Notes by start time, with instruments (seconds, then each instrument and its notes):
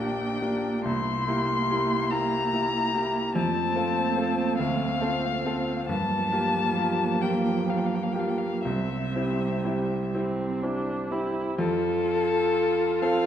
Already playing: grand piano A#1 A#3 D4 G4, cello A#3, viola D4, violin G5
0.42 grand piano A#3 D4 G4
0.85 grand piano C2, viola E4, violin C6
1.28 grand piano A#3 E4 G4
1.70 grand piano A#3 E4 G4
2.10 grand piano A#3 E4 G4, violin A#5
2.53 grand piano A#3 E4 G4
2.94 grand piano A#3 E4 G4
3.35 grand piano F2, cello A3, viola C4, violin A5
3.76 grand piano C4 F4 A4
4.16 grand piano C4 F4 A4
4.58 grand piano D2, violin F5
5.01 grand piano C4 F4 A4
5.45 grand piano C4 F4 A4
5.88 grand piano G2, cello F3, viola A#3, violin A5
6.32 grand piano A#3 F4 G4
6.78 grand piano A#3 F4 G4
7.22 grand piano A#3 F4 G4, violin G5
7.69 grand piano A#3 F4 G4, violin F5
7.77 violin G5
7.86 violin F5
7.95 violin G5
8.03 violin F5
8.12 grand piano A#3 F4 G4, violin G5
8.20 violin F5
8.29 violin G5
8.38 violin F5
8.64 grand piano C2, cello G3, viola C4, violin E5
9.16 grand piano C4 E4 G4
9.64 grand piano C4 E4 G4
10.14 viola C4, grand piano C4 E4 G4
10.63 grand piano C4 E4 G4, viola D4
11.11 grand piano C4 E4 G4, viola E4
11.59 grand piano F2, viola F4, violin A4
13.01 grand piano C4 F4 A4, cello A4, violin F5